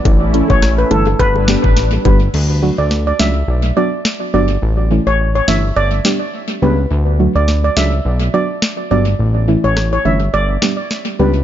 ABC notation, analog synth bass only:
X:1
M:4/4
L:1/16
Q:"Swing 16ths" 1/4=105
K:D
V:1 name="Analog synth bass" clef=bass
A,,,3 A,,,3 G,,,2 G,,,3 A,,,3 G,,,2 | D,,3 D,,3 C,,2 B,,,2 z4 G,,,2 | A,,,3 A,,,3 G,,,2 G,,,2 z4 C,,2 | D,,3 D,,3 C,,2 B,,,2 z4 G,,,2 |
A,,,3 A,,,3 G,,,2 G,,,2 z4 C,,2 |]